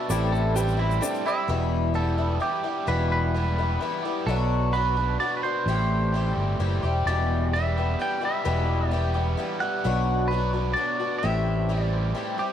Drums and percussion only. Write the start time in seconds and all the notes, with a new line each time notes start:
0.10 shaker
0.34 shaker
0.56 shaker
0.68 shaker
0.91 shaker
1.03 shaker
1.14 shaker
1.27 shaker